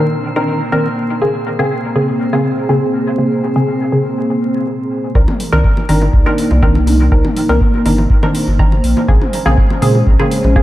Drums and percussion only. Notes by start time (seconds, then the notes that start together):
5.15 kick
5.28 mid tom, low bongo
5.40 open hi-hat
5.52 low bongo
5.64 kick
5.77 low bongo
5.89 open hi-hat
6.02 low bongo
6.13 kick
6.26 low bongo
6.38 open hi-hat
6.51 low bongo
6.63 kick
6.75 low bongo
6.87 open hi-hat, mid tom
7.00 low bongo
7.12 kick
7.25 mid tom, low bongo
7.36 open hi-hat
7.49 low bongo
7.61 kick
7.74 low bongo
7.86 open hi-hat
7.98 low bongo
8.10 kick
8.23 low bongo
8.35 open hi-hat
8.48 low bongo
8.59 kick
8.72 low bongo
8.84 open hi-hat
8.97 low bongo
9.08 kick
9.21 mid tom, low bongo
9.33 open hi-hat
9.46 low bongo
9.58 kick
9.71 low bongo
9.82 open hi-hat
9.95 low bongo
10.07 kick
10.20 low bongo
10.31 open hi-hat
10.44 low bongo
10.56 kick